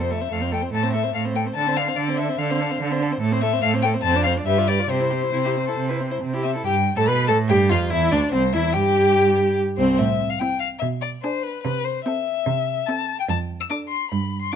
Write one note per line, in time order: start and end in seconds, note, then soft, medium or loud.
0.00 0.27 F2 medium
0.00 0.12 C4 soft
0.00 0.12 C5 soft
0.00 0.13 C5 medium
0.10 0.22 A3 soft
0.10 0.22 A4 soft
0.10 0.34 E5 medium
0.20 0.31 C4 soft
0.20 0.30 C5 soft
0.31 0.69 F2 medium
0.31 0.42 A3 soft
0.31 0.43 A4 soft
0.31 0.53 F5 medium
0.41 0.53 C4 soft
0.41 0.53 C5 soft
0.51 0.63 A3 soft
0.51 0.64 A4 soft
0.51 0.61 G5 medium
0.62 0.72 C4 soft
0.62 0.72 C5 soft
0.73 1.10 A2 medium
0.73 0.85 A3 soft
0.73 0.84 A4 soft
0.73 0.93 A5 medium
0.83 0.95 C4 soft
0.83 0.95 C5 soft
0.93 1.06 A3 soft
0.93 1.04 A4 soft
0.93 1.14 E5 medium
1.03 1.14 C4 soft
1.03 1.13 C5 soft
1.13 1.52 A2 medium
1.13 1.27 A3 soft
1.13 1.26 A4 soft
1.13 1.22 F5 medium
1.25 1.36 C4 soft
1.25 1.37 C5 soft
1.35 1.47 A3 soft
1.35 1.49 A4 soft
1.35 1.43 G5 medium
1.45 1.56 C4 soft
1.45 1.57 C5 soft
1.54 1.93 D3 medium
1.54 1.68 D4 medium
1.54 1.69 A4 soft
1.54 1.78 A5 medium
1.67 1.79 C4 soft
1.67 1.80 C5 soft
1.77 1.89 D4 soft
1.77 1.89 A4 soft
1.77 1.98 F5 medium
1.87 1.97 C4 soft
1.87 1.98 C5 soft
1.96 2.34 D3 medium
1.96 2.10 D4 soft
1.96 2.11 A4 soft
1.96 2.19 D5 medium
2.08 2.20 C4 soft
2.08 2.20 C5 soft
2.17 2.30 D4 soft
2.17 2.31 A4 soft
2.17 2.40 E5 medium
2.29 2.39 C4 soft
2.29 2.39 C5 soft
2.38 2.76 D3 medium
2.38 2.52 D4 medium
2.38 2.52 A4 soft
2.38 3.01 F5 medium
2.50 2.62 C4 soft
2.50 2.62 C5 soft
2.60 2.72 D4 soft
2.60 2.72 A4 medium
2.71 2.81 C4 soft
2.71 2.81 C5 soft
2.81 3.17 D3 medium
2.81 2.92 D4 medium
2.81 2.93 A4 medium
2.90 3.02 C4 soft
2.90 3.04 C5 soft
3.00 3.12 D4 medium
3.00 3.14 A4 medium
3.11 3.21 C4 soft
3.11 3.21 C5 medium
3.21 3.58 A2 medium
3.21 3.33 A3 medium
3.21 3.34 A4 medium
3.31 3.44 C4 medium
3.31 3.44 C5 medium
3.31 3.43 C5 medium
3.41 3.54 A3 medium
3.41 3.54 A4 medium
3.41 3.62 E5 medium
3.53 3.62 C4 medium
3.53 3.63 C5 medium
3.62 4.00 A2 medium
3.62 3.75 A3 medium
3.62 3.76 A4 medium
3.62 3.70 F5 medium
3.73 3.85 C4 medium
3.73 3.86 C5 medium
3.82 3.96 A3 medium
3.82 3.96 A4 medium
3.82 3.90 G5 loud
3.94 4.04 C4 medium
3.94 4.05 C5 medium
4.02 4.42 F2 medium
4.02 4.16 C4 medium
4.02 4.23 A5 loud
4.06 4.18 C5 medium
4.15 4.27 D4 medium
4.15 4.28 D5 medium
4.24 4.38 C4 medium
4.24 4.39 C5 medium
4.24 4.32 F5 medium
4.36 4.46 D4 soft
4.36 4.47 D5 soft
4.46 4.85 G2 medium
4.46 4.59 G4 medium
4.46 4.60 B4 medium
4.46 4.69 E5 medium
4.57 4.70 F4 soft
4.57 4.71 D5 soft
4.68 4.80 G4 medium
4.68 4.82 B4 medium
4.68 4.91 D5 medium
4.79 4.89 F4 soft
4.79 4.90 D5 soft
4.89 5.29 C3 medium
4.89 5.02 C4 medium
4.89 5.02 G4 medium
4.89 6.42 C5 medium
5.00 5.14 E4 soft
5.00 5.12 C5 soft
5.10 5.25 C4 soft
5.10 5.23 G4 soft
5.21 5.34 E4 soft
5.21 5.32 C5 soft
5.33 5.72 C3 medium
5.33 5.47 C4 medium
5.33 5.37 E4 medium
5.45 5.58 E4 soft
5.45 5.53 G4 medium
5.57 5.70 C4 soft
5.67 5.79 E4 soft
5.67 5.88 A4 medium
5.77 6.16 C3 medium
5.77 5.92 C4 soft
5.89 6.02 E4 soft
5.89 5.97 B4 soft
6.00 6.13 C4 soft
6.11 6.22 E4 soft
6.11 6.19 C5 medium
6.22 6.60 C3 medium
6.22 6.35 C4 soft
6.34 6.46 E4 soft
6.34 6.54 G4 soft
6.43 6.57 C4 soft
6.43 6.51 E5 medium
6.54 6.65 E4 soft
6.54 6.64 A4 soft
6.65 6.94 G2 medium
6.65 6.73 G4 medium
6.65 6.96 G5 loud
6.96 7.09 A2 medium
6.96 7.01 A4 medium
6.96 7.09 A4 medium
6.96 7.07 A5 medium
7.06 7.30 B2 medium
7.06 7.28 B4 medium
7.06 7.27 B5 loud
7.28 7.51 A2 medium
7.28 7.36 A4 medium
7.28 7.36 A5 medium
7.49 7.73 G2 medium
7.49 7.71 G4 medium
7.49 7.57 G4 medium
7.49 7.57 G5 medium
7.69 7.94 F2 medium
7.69 7.91 F4 medium
7.69 7.79 F4 medium
7.69 7.79 F5 medium
7.90 8.12 E2 medium
7.90 8.11 E4 medium
7.90 8.14 E4 medium
7.90 8.13 E5 medium
8.11 8.21 D2 medium
8.11 8.19 D4 medium
8.11 8.33 D4 medium
8.11 8.31 D5 medium
8.32 8.56 C2 medium
8.32 8.40 C4 medium
8.32 8.42 C4 medium
8.32 8.54 C5 medium
8.53 8.77 E2 medium
8.53 8.75 E4 medium
8.53 8.74 E4 medium
8.53 8.75 E5 medium
8.73 9.58 G2 medium
8.73 9.57 G4 medium
8.73 9.56 G4 medium
8.73 9.57 G5 medium
9.77 9.97 C2 medium
9.77 9.97 C4 medium
9.77 9.98 C4 medium
9.77 9.99 C5 medium
9.98 10.32 A2 medium
9.98 10.31 E5 medium
10.30 10.41 F5 medium
10.39 10.71 C4 medium
10.39 10.71 E4 medium
10.39 10.59 G5 medium
10.60 10.68 F5 medium
10.79 11.14 B2 medium
10.79 10.87 E5 medium
11.01 11.09 D5 medium
11.22 11.54 D4 medium
11.22 11.54 G#4 medium
11.22 11.44 C5 medium
11.43 11.62 B4 medium
11.63 11.97 C3 medium
11.63 11.86 B4 medium
11.84 12.04 C5 medium
12.04 12.36 C4 medium
12.04 12.36 A4 medium
12.04 12.88 E5 medium
12.46 12.79 C3 medium
12.86 13.19 C4 medium
12.86 13.19 A4 medium
12.86 13.18 A5 medium
13.20 13.23 G5 medium
13.29 13.62 F2 medium
13.29 13.37 A5 medium
13.60 13.64 E6 medium
13.70 14.01 D4 medium
13.70 14.01 A4 medium
13.70 13.78 D6 medium
13.89 14.10 C6 medium
14.11 14.44 G2 medium
14.11 14.41 B5 medium
14.41 14.53 C6 medium
14.52 14.56 D6 medium